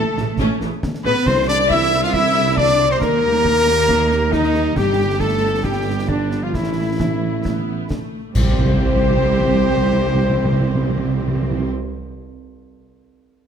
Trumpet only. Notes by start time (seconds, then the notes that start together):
Already playing: A4
1.05 B4
1.27 C5
1.49 D5
1.71 E5
2.04 F5
2.14 E5
2.58 D5
2.91 C5
3.01 A#4
4.33 D#4
4.77 G4
5.21 A4
5.65 G4
6.09 D4
6.44 F4
6.56 E4
8.37 C5